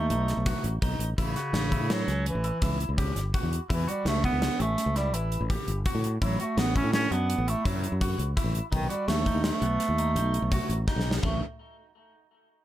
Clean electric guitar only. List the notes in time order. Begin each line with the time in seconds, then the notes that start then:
0.11 D#4
0.46 F#4
0.83 D#4
1.18 E4
1.36 F#4
1.72 E4
2.08 C#4
2.44 E4
2.62 E4
2.98 G4
3.34 F#4
3.69 E4
3.88 F#4
4.24 E4
4.60 C#4
4.96 E4
5.14 E4
5.50 G4
5.86 F#4
6.22 E4
6.40 F#4
6.77 E4
7.12 D4
7.48 E4
7.66 E4
8.01 F#4
8.37 E4
8.72 D#4
8.90 F#4
9.26 D#4
9.62 B3
9.98 D#4
10.16 D#4
10.52 F#4
10.88 D#4
11.23 A3